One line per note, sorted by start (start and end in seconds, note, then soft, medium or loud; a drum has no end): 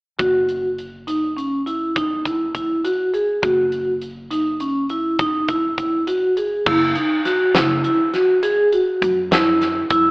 0.19 3.39 F#1 medium
0.19 0.65 F#4 medium
0.19 kick medium
0.19 closed hi-hat medium
0.49 closed hi-hat soft
0.78 closed hi-hat soft
1.07 1.30 D#4 medium
1.07 closed hi-hat medium
1.37 1.60 C#4 medium
1.37 closed hi-hat soft
1.66 1.89 E4 medium
1.66 closed hi-hat soft
1.96 2.19 D#4 medium
1.96 kick medium
1.96 closed hi-hat medium
2.25 2.48 E4 medium
2.25 kick medium
2.25 closed hi-hat soft
2.55 2.78 E4 medium
2.55 kick medium
2.55 closed hi-hat soft
2.85 3.08 F#4 medium
2.85 closed hi-hat medium
3.14 3.37 G#4 medium
3.14 closed hi-hat soft
3.42 6.63 F#1 medium
3.42 3.89 F#4 medium
3.42 kick medium
3.42 closed hi-hat medium
3.72 closed hi-hat soft
4.01 closed hi-hat soft
4.31 4.54 D#4 medium
4.31 closed hi-hat medium
4.60 4.84 C#4 medium
4.60 closed hi-hat soft
4.89 5.13 E4 medium
4.89 closed hi-hat soft
5.19 5.43 D#4 medium
5.19 kick medium
5.19 closed hi-hat medium
5.48 5.72 E4 medium
5.48 kick medium
5.48 closed hi-hat medium
5.78 6.01 E4 medium
5.78 kick medium
5.78 closed hi-hat soft
6.07 6.31 F#4 medium
6.07 closed hi-hat medium
6.37 6.60 G#4 medium
6.37 closed hi-hat soft
6.66 6.93 F#1 medium
6.66 6.90 E4 medium
6.66 kick medium
6.66 crash medium
6.95 7.19 D#4 medium
6.95 closed hi-hat medium
7.25 7.49 F#4 medium
7.25 snare soft
7.25 closed hi-hat medium
7.54 7.81 F#1 medium
7.54 7.78 E4 medium
7.54 snare loud
7.54 closed hi-hat medium
7.84 8.08 E4 medium
7.84 closed hi-hat medium
8.14 8.37 F#4 medium
8.14 snare soft
8.14 closed hi-hat medium
8.43 8.66 G#4 medium
8.43 closed hi-hat medium
8.72 9.19 F#4 medium
8.72 closed hi-hat medium
9.02 9.81 F#2 medium
9.02 kick medium
9.02 closed hi-hat medium
9.31 9.78 E4 medium
9.31 snare loud
9.31 closed hi-hat medium
9.61 snare soft
9.61 closed hi-hat medium
9.90 10.11 F#2 medium
9.90 10.11 E4 medium
9.90 kick medium
9.90 closed hi-hat medium